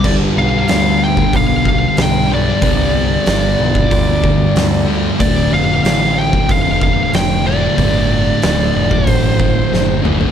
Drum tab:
CC |x---------------|----------------|----------------|----------------|
HH |----o---o---o---|o---o---o---o---|o---o---o---o---|o---o---o-------|
SD |----o-------o---|----o-------o---|----o-------o---|----o-------o---|
T2 |----------------|----------------|----------------|--------------o-|
FT |----------------|----------------|----------------|---------------o|
BD |o------oo-o-----|o------oo-o-----|o------oo-o-----|o------oo-o-----|